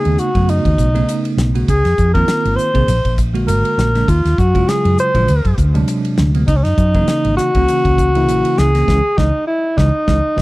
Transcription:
Already playing: tine electric piano C#3 A3 B3 D#4, alto saxophone G#4
0.05 fretless electric bass D#2, ride
0.18 alto saxophone F#4, hi-hat pedal
0.34 fretless electric bass F#2, tine electric piano C#3 A3 B3 F#4, kick, ride
0.49 alto saxophone D#4, hi-hat pedal, ride
0.65 fretless electric bass D#2, kick, ride
0.78 fretless electric bass B1, kick, hi-hat pedal
0.95 tine electric piano C#3 A3 B3 D#4, ride
1.09 hi-hat pedal, ride
1.25 ride
1.37 fretless electric bass B1, snare, hi-hat pedal
1.54 tine electric piano C#3 A3 B3 F#4, ride
1.68 fretless electric bass C#2, alto saxophone G#4, kick, hi-hat pedal, ride
1.85 fretless electric bass F2, snare, ride
1.98 fretless electric bass F2, kick, hi-hat pedal
2.14 tine electric piano D#3 A#3 C4 F4, alto saxophone A#4, kick, ride
2.28 snare, hi-hat pedal, ride
2.45 fretless electric bass G#1, ride
2.56 alto saxophone C5, hi-hat pedal
2.74 fretless electric bass C2, tine electric piano D#3 A#3 C4 G#4, kick, ride
2.88 fretless electric bass A#1, hi-hat pedal, ride
3.05 fretless electric bass A#1, kick, ride
3.18 kick, hi-hat pedal
3.33 tine electric piano D3 G#3 A#3 F#4, ride
3.47 fretless electric bass G#1, alto saxophone A#4, hi-hat pedal, ride
3.65 ride
3.78 fretless electric bass A#1, snare, hi-hat pedal
3.94 tine electric piano D3 G#3 A#3 D4, snare, ride
4.08 fretless electric bass D#2, alto saxophone F4, kick, hi-hat pedal, ride
4.25 fretless electric bass D#2, snare, ride
4.38 fretless electric bass F#2, alto saxophone F#4, kick, hi-hat pedal
4.54 tine electric piano C#3 F#3 G#3 F4, kick, ride
4.69 alto saxophone G#4, snare, hi-hat pedal, ride
4.85 fretless electric bass F#2, ride
4.98 alto saxophone C5, hi-hat pedal
5.14 fretless electric bass A#1, tine electric piano C#3 F#3 G#3 F4, kick, ride
5.28 fretless electric bass D2, hi-hat pedal, ride
5.45 fretless electric bass F#2, kick, ride
5.58 fretless electric bass D2, kick, hi-hat pedal
5.74 tine electric piano C3 F#3 G#3 D4, ride
5.88 hi-hat pedal, ride
6.05 ride
6.17 fretless electric bass D2, snare, hi-hat pedal
6.35 tine electric piano C3 F#3 G#3 B3, ride
6.48 fretless electric bass C#2, alto saxophone D#4, kick, hi-hat pedal, ride
6.56 alto saxophone C#4
6.63 fretless electric bass F#2, alto saxophone D#4, snare, ride
6.77 fretless electric bass F#2, kick, hi-hat pedal
6.94 tine electric piano C#3 E3 A#3 D#4, kick, ride
7.08 snare, hi-hat pedal, ride
7.25 fretless electric bass G#1, ride
7.37 alto saxophone F#4, muted fretless electric bass stroke, snare, hi-hat pedal
7.55 fretless electric bass C#2, tine electric piano C#3 E3 A#3 C#4, kick, ride
7.68 hi-hat pedal, ride
7.85 fretless electric bass C#2, kick, ride
7.98 kick, hi-hat pedal
8.15 tine electric piano C#3 E3 A#3 E4, ride
8.28 fretless electric bass A#1, hi-hat pedal, ride
8.45 ride
8.58 fretless electric bass C#2, alto saxophone G#4, snare, hi-hat pedal
8.74 tine electric piano C#3 E3 A#3 C#4, snare, ride
8.88 fretless electric bass C#2, tine electric piano C#3 E3 G#3, kick, snare
9.18 fretless electric bass C#2, tine electric piano C#3 E3 G#3, alto saxophone D#4, kick, snare
9.47 alto saxophone E4
9.77 fretless electric bass C#2, tine electric piano C#3 E3 G#3, alto saxophone D#4, kick, snare
10.07 fretless electric bass C#2, tine electric piano C#3 E3 G#3, kick, snare
10.37 fretless electric bass C#2, tine electric piano C#3 E3 G#3, kick, snare

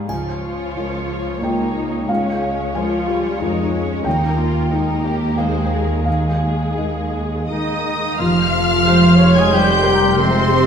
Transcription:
Already playing: felt piano G#2 G#3 D#4 A#4 D#5 F5 A#5 C6
0.08 double bass section C#2, cello section C#2, felt piano C#2 G#5, viola section F3, violin section F4 C#5, triangle
0.43 viola section F3
0.76 felt piano G#3 F4 A#4
1.42 felt piano G#3 F4 A#4 G5, viola section A#3, violin section D#4
1.75 viola section A#3
2.08 felt piano C#2 F5, viola section G#3, violin section C#4 C#5
2.75 viola section F3, felt piano G#3 F4 A#4 G#5, violin section F4
3.08 viola section G3
3.39 cello section F2, viola section G#3, felt piano G#3 F4 A#4, violin section D#4
3.74 violin section C#4
4.04 cello section D#2, double bass section D#2, felt piano D#2 G5, viola section A#3, violin section D#4 A#4
4.39 violin section F4
4.69 felt piano G#3 D#4 A#4, viola section A#3, violin section D#4 A#4
5.04 violin section G4
5.37 viola section G#3, felt piano G#3 D#4 A#4 F5, violin section G#4 C5
5.71 violin section A#4
6.05 felt piano D#2 F5, viola section G#3, violin section G#4
6.77 felt piano G#3 D#4 A#4 D#5
7.48 cello section D#3, french horn section D#3, felt piano G#3 D#4 A#4, oboe D#4, violin section D#5 D#6
8.19 double bass section F1, felt piano F2, french horn section F3, cello section F3, oboe F4, clarinet G4, violin section F5 F6, flute C6
8.86 felt piano G#3 G4, viola section C5
9.19 viola section C#5
9.34 cello section G#3, french horn section G#3, oboe G#4, violin section G#5 G#6
9.51 cello section G3, felt piano G3 G4, french horn section G3, oboe G4, viola section C5, violin section G5 G6
9.83 viola section A#4
10.18 felt piano F2, cello section C3, french horn section C3, viola section G#3, oboe C4, violin section C5 C6
10.49 viola section G4

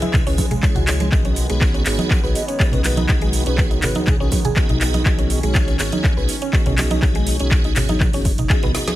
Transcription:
Already playing: analog synth pad C#3 G#3 D#5, tonewheel organ E4 G#4 B4
0.02 synth arpeggio sound E4, closed hi-hat, high conga, shaker
0.13 kick, clap, high conga, low conga, shaker
0.26 analog synth bass C#2, synth arpeggio sound C#4, tonewheel organ E4 G#4 B4, open hi-hat, shaker
0.38 kick, open hi-hat, high conga, shaker
0.51 synth arpeggio sound G#3, closed hi-hat, low conga, shaker
0.63 synth arpeggio sound G#3, tonewheel organ E4 G#4 C#5, kick, clap, shaker
0.75 analog synth bass C#2, synth arpeggio sound F#4, closed hi-hat, high conga, low conga, shaker
0.87 tonewheel organ E4 G#4 C#5, clap, open hi-hat, shaker
1.00 synth arpeggio sound G#3, closed hi-hat, high conga, shaker
1.12 analog synth bass B1, analog synth pad D#3 B3, tonewheel organ B3 D#4 F#4 G#4 D#5, kick, clap, shaker
1.25 synth arpeggio sound C#4, closed hi-hat, high conga, shaker
1.36 open hi-hat, shaker
1.50 analog synth bass B1, synth arpeggio sound G#3, tonewheel organ B3 D#4 F#4 G#4 C#5, closed hi-hat, shaker
1.61 kick, clap, shaker
1.74 synth arpeggio sound C#4, closed hi-hat, shaker
1.86 analog synth bass G#1, tonewheel organ B3 D#4 F#4 G#4 C#5, clap, open hi-hat, shaker
1.98 synth arpeggio sound D#4, closed hi-hat, high conga, shaker
2.11 kick, clap, shaker
2.24 analog synth bass B1, tonewheel organ B3 D#4 F#4 G#4 C#5, synth arpeggio sound B4, shaker
2.35 bansuri D#5, open hi-hat, shaker
2.48 synth arpeggio sound C#4, bansuri C#5, closed hi-hat, shaker
2.60 tonewheel organ B3 D#4 F#4 G#4 D#5, kick, clap, shaker
2.72 analog synth bass B1, synth arpeggio sound C#4, bansuri B4, closed hi-hat, low conga, shaker
2.84 tonewheel organ B3 D#4 F#4 G#4 D#5, bansuri B4, clap, open hi-hat, high conga, shaker
2.97 synth arpeggio sound D#4, closed hi-hat, high conga, shaker
3.09 analog synth bass B1, tonewheel organ B3 D#4 F#4 G#4 D#5, kick, clap, shaker
3.22 synth arpeggio sound G#3, closed hi-hat, high conga, shaker
3.33 open hi-hat, shaker
3.46 analog synth bass B1, tonewheel organ B3 D#4 F#4 G#4 C#5, synth arpeggio sound C#4, bansuri B4, closed hi-hat, shaker
3.58 kick, clap, shaker
3.71 synth arpeggio sound D#4, closed hi-hat, shaker
3.82 analog synth bass G#1, tonewheel organ B3 D#4 F#4 G#4 C#5, bansuri B4, clap, open hi-hat, low conga, shaker
3.95 synth arpeggio sound D#4, closed hi-hat, high conga, shaker
4.07 bansuri G#4, kick, clap, high conga, low conga, shaker
4.20 analog synth bass B1, tonewheel organ B3 D#4 F#4 G#4 C#5, synth arpeggio sound C#4, bansuri G#4, shaker
4.32 kick, open hi-hat, high conga, shaker
4.45 synth arpeggio sound G#4, closed hi-hat, low conga, shaker
4.56 tonewheel organ B3 D#4 F#4 G#4 D#5, kick, clap, shaker
4.69 analog synth bass B1, synth arpeggio sound D#4, closed hi-hat, high conga, low conga, shaker
4.81 tonewheel organ B3 D#4 F#4 G#4 D#5, clap, open hi-hat, shaker
4.94 synth arpeggio sound D#4, closed hi-hat, high conga, shaker
5.06 analog synth bass B1, tonewheel organ B3 D#4 F#4 G#4 D#5, analog synth pad C#4, kick, clap, shaker
5.18 synth arpeggio sound C#4, closed hi-hat, high conga, shaker
5.30 open hi-hat, shaker
5.43 analog synth bass B1, synth arpeggio sound G#3, tonewheel organ B3 D#4 F#4 G#4 C#5, closed hi-hat, shaker
5.55 kick, clap, shaker
5.68 synth arpeggio sound C#4, closed hi-hat, shaker
5.79 analog synth bass G#1, tonewheel organ B3 D#4 F#4 G#4 C#5, clap, open hi-hat, shaker
5.92 synth arpeggio sound D#4, closed hi-hat, high conga, shaker
6.04 kick, clap, shaker
6.17 analog synth bass B1, tonewheel organ B3 D#4 F#4 G#4 C#5, synth arpeggio sound B4, shaker
6.29 open hi-hat, shaker
6.42 synth arpeggio sound C#4, closed hi-hat, shaker
6.53 tonewheel organ B3 D#4 F#4 G#4 D#5, kick, clap, shaker
6.66 analog synth bass B1, synth arpeggio sound C#4, closed hi-hat, low conga, shaker
6.78 tonewheel organ B3 D#4 F#4 G#4 D#5, clap, open hi-hat, high conga, shaker
6.90 synth arpeggio sound D#4, closed hi-hat, high conga, shaker
7.02 analog synth bass B1, tonewheel organ B3 D#4 F#4 G#4 D#5, kick, clap, shaker
7.15 synth arpeggio sound G#3, closed hi-hat, high conga, shaker
7.27 open hi-hat, shaker
7.39 analog synth bass B1, tonewheel organ B3 D#4 F#4 G#4 C#5, synth arpeggio sound C#4, closed hi-hat, shaker
7.51 kick, clap, shaker
7.64 synth arpeggio sound D#4, closed hi-hat, shaker
7.76 analog synth bass G#1, tonewheel organ B3 D#4 F#4 G#4 C#5, clap, open hi-hat, low conga, shaker
7.89 synth arpeggio sound D#4, closed hi-hat, high conga, shaker
8.00 kick, clap, high conga, low conga, shaker
8.13 analog synth bass F#1, tonewheel organ B3 D#4 F#4 G#4 C#5, synth arpeggio sound C#4, open hi-hat, shaker
8.25 kick, open hi-hat, high conga, shaker
8.38 synth arpeggio sound D#4, closed hi-hat, low conga, shaker
8.50 tonewheel organ B3 D#4 F#4 G#4 D#5, synth arpeggio sound G#4, kick, clap, shaker
8.63 analog synth bass B1, synth arpeggio sound B3, closed hi-hat, high conga, low conga, shaker
8.74 tonewheel organ B3 D#4 F#4 G#4 D#5, snare, open hi-hat, shaker
8.87 synth arpeggio sound G#4, snare, closed hi-hat, high conga, shaker

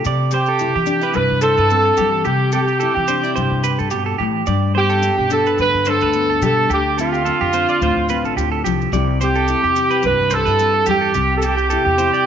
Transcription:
0.05 nylon-string guitar C3, upright bass C3, clean electric guitar D5, maracas
0.31 nylon-string guitar C4, horn section G4, clean electric guitar C5, maracas
0.46 clean electric guitar A4, maracas
0.59 nylon-string guitar E4, maracas
0.76 upright bass E3, clean electric guitar G4
0.86 nylon-string guitar D4, maracas
1.01 nylon-string guitar E4, clean electric guitar B4, maracas
1.14 nylon-string guitar G2, upright bass C3, horn section B4, maracas
1.31 upright bass C3
1.41 nylon-string guitar E4, horn section A4, clean electric guitar C5, maracas
1.57 upright bass G2, clean electric guitar B4, maracas
1.70 nylon-string guitar C4, maracas
1.85 clean electric guitar A4
1.97 upright bass E3, nylon-string guitar G3, clean electric guitar G4, maracas
2.12 clean electric guitar A4
2.25 nylon-string guitar C3, upright bass C3, clean electric guitar G4, horn section G4, maracas
2.52 nylon-string guitar C4, horn section G4, clean electric guitar A4, maracas
2.67 clean electric guitar G4, maracas
2.80 nylon-string guitar E4, clean electric guitar A4, maracas
2.95 upright bass E3, clean electric guitar G4
3.08 nylon-string guitar D4, clean electric guitar C5, maracas
3.23 nylon-string guitar E4, clean electric guitar D5, maracas
3.36 nylon-string guitar G2, upright bass C3, clean electric guitar C5, maracas
3.52 upright bass C3
3.64 clean electric guitar B4, maracas
3.79 upright bass G2, clean electric guitar A4, maracas
3.90 nylon-string guitar B2, clean electric guitar G4, maracas
4.06 clean electric guitar A4
4.18 nylon-string guitar A2, upright bass E3, clean electric guitar G4
4.46 upright bass G2, nylon-string guitar G2, clean electric guitar D5, maracas
4.75 nylon-string guitar B3, horn section G4, clean electric guitar C5
4.90 clean electric guitar A4, maracas
5.03 nylon-string guitar D4, maracas
5.18 upright bass B2, clean electric guitar G4
5.30 nylon-string guitar D4, horn section A4, maracas
5.46 clean electric guitar B4, maracas
5.58 upright bass G2, nylon-string guitar D3, horn section B4, maracas
5.74 upright bass G2
5.85 nylon-string guitar D4, horn section A4, clean electric guitar C5, maracas
6.01 upright bass D2, clean electric guitar B4, maracas
6.13 nylon-string guitar B3, maracas
6.30 clean electric guitar A4
6.42 upright bass B2, nylon-string guitar G3, clean electric guitar G4, horn section A4, maracas
6.57 clean electric guitar A4
6.70 upright bass D2, nylon-string guitar D3, clean electric guitar G4, horn section G4, maracas
6.98 nylon-string guitar C4, horn section F4, clean electric guitar A4, maracas
7.13 clean electric guitar G4, maracas
7.25 nylon-string guitar C4, clean electric guitar A4, maracas
7.41 upright bass F2, clean electric guitar G4
7.53 nylon-string guitar C4, clean electric guitar C5, maracas
7.69 clean electric guitar D5, maracas
7.81 upright bass D2, nylon-string guitar A2, clean electric guitar C5, maracas
7.96 upright bass D2
8.09 nylon-string guitar C4, clean electric guitar B4, maracas
8.24 upright bass A1, clean electric guitar A4, maracas
8.37 upright bass D2, nylon-string guitar C4, clean electric guitar G4, maracas
8.52 clean electric guitar A4
8.64 upright bass C2, nylon-string guitar F3, clean electric guitar G4, maracas
8.81 maracas
8.92 upright bass C2, nylon-string guitar C3 G3 C4 E4 G4, clean electric guitar D5, maracas
9.21 nylon-string guitar C4, horn section G4, clean electric guitar C5, maracas
9.35 clean electric guitar A4, maracas
9.48 nylon-string guitar E4, maracas
9.63 upright bass E2, clean electric guitar G4
9.76 nylon-string guitar E4, maracas
9.91 clean electric guitar B4, maracas
10.03 upright bass C2, nylon-string guitar G2, horn section B4, maracas
10.19 upright bass C2
10.30 nylon-string guitar D4, horn section A4, clean electric guitar C5, maracas
10.45 upright bass G2, nylon-string guitar E4, clean electric guitar B4, maracas
10.59 nylon-string guitar C4, maracas
10.74 clean electric guitar A4
10.86 upright bass E2, nylon-string guitar G3, clean electric guitar G4, horn section G4, maracas
11.01 clean electric guitar A4
11.14 upright bass C2, nylon-string guitar C3, clean electric guitar G4, maracas
11.36 horn section A4
11.42 nylon-string guitar C4, horn section G4, clean electric guitar A4, maracas
11.57 clean electric guitar G4, maracas
11.70 nylon-string guitar E4, clean electric guitar A4, maracas
11.85 upright bass E2, clean electric guitar G4
11.98 nylon-string guitar E4, clean electric guitar C5, maracas
12.14 clean electric guitar D5, maracas

